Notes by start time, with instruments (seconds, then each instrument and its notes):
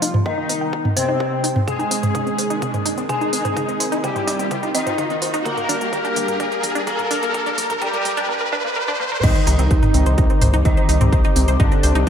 Already playing: analog polysynth F3 F4, analog synth pad C4 G4 C5 G5, synth bell F5, riser
0.02 synth arpeggio sound D#4, open hi-hat
0.14 synth arpeggio sound C4, mid tom
0.26 analog polysynth D#3 D#4, synth bell D#5, synth arpeggio sound G5, kick
0.38 synth arpeggio sound D#4
0.49 synth arpeggio sound C4, open hi-hat
0.61 synth arpeggio sound G5
0.73 synth arpeggio sound D#4, kick
0.85 synth arpeggio sound C4, mid tom
0.97 analog polysynth C3 C4, synth bell C5, synth arpeggio sound G5, open hi-hat
1.09 synth arpeggio sound D#4
1.20 synth arpeggio sound C4, kick
1.32 synth arpeggio sound G5
1.44 synth arpeggio sound D#4, open hi-hat
1.56 synth arpeggio sound C4, mid tom
1.67 analog polysynth G#3 G#4, analog synth pad C4 D#4 A#4, synth arpeggio sound C5, synth bell G#5, kick, closed hi-hat, mid tom
1.79 synth arpeggio sound D#4, closed hi-hat
1.91 synth arpeggio sound C4, open hi-hat
2.03 synth arpeggio sound C5, closed hi-hat, mid tom
2.15 synth arpeggio sound D#4, kick, closed hi-hat, mid tom
2.27 synth arpeggio sound C4, closed hi-hat
2.38 synth arpeggio sound C5, open hi-hat
2.50 synth arpeggio sound D#4, closed hi-hat
2.62 synth arpeggio sound C4, kick, closed hi-hat, mid tom
2.74 synth arpeggio sound C5, closed hi-hat, mid tom
2.86 synth arpeggio sound D#4, open hi-hat
2.98 synth arpeggio sound C4, closed hi-hat
3.09 analog polysynth G#3 G#4, synth arpeggio sound C5, synth bell G#5, kick, closed hi-hat, mid tom
3.21 synth arpeggio sound D#4, closed hi-hat
3.33 synth arpeggio sound C4, open hi-hat
3.45 synth arpeggio sound C5, closed hi-hat, mid tom
3.56 synth arpeggio sound D#4, kick, closed hi-hat, mid tom
3.68 synth arpeggio sound C4, closed hi-hat
3.80 synth arpeggio sound C5, open hi-hat
3.92 synth arpeggio sound D#4, closed hi-hat
4.04 analog polysynth G3 G4, synth arpeggio sound C4, synth bell G5, kick, closed hi-hat, mid tom
4.16 synth arpeggio sound C5, closed hi-hat, mid tom
4.27 synth arpeggio sound D#4, open hi-hat
4.39 synth arpeggio sound C4, closed hi-hat
4.51 synth arpeggio sound C5, kick, closed hi-hat, mid tom
4.63 synth arpeggio sound D#4, closed hi-hat
4.75 analog polysynth D#3 D#4, synth arpeggio sound C4, synth bell D#5, open hi-hat
4.86 synth arpeggio sound C5, closed hi-hat, mid tom
4.98 synth arpeggio sound D#4, kick, closed hi-hat, mid tom
5.10 synth arpeggio sound C4, closed hi-hat
5.22 synth arpeggio sound C5, open hi-hat
5.34 synth arpeggio sound D#4, closed hi-hat
5.45 analog synth pad G3 D4 G4, synth arpeggio sound A#3, analog polysynth A#3 A#4, synth bell A#5, kick, closed hi-hat, mid tom
5.57 synth arpeggio sound A#4, closed hi-hat, mid tom
5.69 synth arpeggio sound D4, open hi-hat, mid tom
5.81 synth arpeggio sound A#3, closed hi-hat
5.93 synth arpeggio sound A#4, kick, closed hi-hat, mid tom
6.04 synth arpeggio sound D4, closed hi-hat
6.16 synth arpeggio sound A#3, open hi-hat, mid tom
6.28 synth arpeggio sound A#4, closed hi-hat, mid tom
6.40 synth arpeggio sound D4, kick, closed hi-hat, mid tom
6.52 synth arpeggio sound A#3, closed hi-hat
6.63 synth arpeggio sound A#4, open hi-hat, mid tom
6.75 synth arpeggio sound D4, closed hi-hat
6.87 synth arpeggio sound A#3, analog polysynth A#3 A#4, synth bell A#5, kick, closed hi-hat, mid tom
6.99 synth arpeggio sound A#4, closed hi-hat, mid tom
7.11 synth arpeggio sound D4, open hi-hat, mid tom
7.23 synth arpeggio sound A#3, closed hi-hat
7.34 synth arpeggio sound A#4, kick, closed hi-hat, mid tom
7.46 synth arpeggio sound D4, closed hi-hat, mid tom
7.58 synth arpeggio sound A#3, open hi-hat, mid tom
7.70 synth arpeggio sound A#4, closed hi-hat, mid tom
7.82 analog polysynth G3 G4, synth arpeggio sound D4, synth bell G5, kick, closed hi-hat, mid tom
7.93 synth arpeggio sound A#3, closed hi-hat, mid tom
8.05 synth arpeggio sound A#4, open hi-hat, mid tom
8.17 synth arpeggio sound D4, closed hi-hat, mid tom
8.29 synth arpeggio sound A#3
8.41 synth arpeggio sound A#4
8.52 synth arpeggio sound D4
8.65 synth arpeggio sound A#3
8.76 synth arpeggio sound A#4
8.88 synth arpeggio sound D4
9.00 synth arpeggio sound A#3, high tom
9.12 synth arpeggio sound A#4, mid tom
9.23 analog synth bass C2, analog polysynth D#3 D#4, analog synth pad C4 G4 C5 D6, synth arpeggio sound C4, synth bell D#5, kick, closed hi-hat, mid tom, crash
9.35 synth arpeggio sound C5, closed hi-hat
9.47 analog synth bass C2, synth arpeggio sound D#4, open hi-hat
9.59 analog synth bass C2, synth arpeggio sound C4, closed hi-hat
9.71 analog synth bass C2, synth arpeggio sound C5, kick, closed hi-hat
9.83 synth arpeggio sound D#4, closed hi-hat, mid tom
9.94 analog synth bass C2, synth arpeggio sound C4, open hi-hat
10.06 analog synth bass C2, synth arpeggio sound C5, closed hi-hat
10.18 analog synth bass C2, synth arpeggio sound D#4, kick, closed hi-hat
10.30 synth arpeggio sound C4, closed hi-hat
10.41 analog synth bass C2, synth arpeggio sound C5, mid tom, open hi-hat
10.53 analog synth bass C2, synth arpeggio sound D#4, closed hi-hat
10.65 analog synth bass C2, analog polysynth D#3 D#4, synth arpeggio sound C4, synth bell D#5, kick, closed hi-hat
10.77 synth arpeggio sound C5, closed hi-hat
10.89 analog synth bass C2, synth arpeggio sound D#4, open hi-hat
11.01 analog synth bass C2, synth arpeggio sound C4, closed hi-hat, mid tom
11.12 analog synth bass C2, synth arpeggio sound C5, kick, closed hi-hat
11.24 synth arpeggio sound D#4, closed hi-hat
11.36 analog synth bass C2, synth arpeggio sound C4, open hi-hat
11.48 analog synth bass C2, synth arpeggio sound C5, closed hi-hat
11.60 analog synth bass C2, analog polysynth D3 D4, synth arpeggio sound D#4, synth bell D5, kick, closed hi-hat, mid tom
11.72 synth arpeggio sound C4, closed hi-hat
11.83 analog synth bass C2, synth arpeggio sound C5, open hi-hat
11.95 analog synth bass C2, synth arpeggio sound D#4, closed hi-hat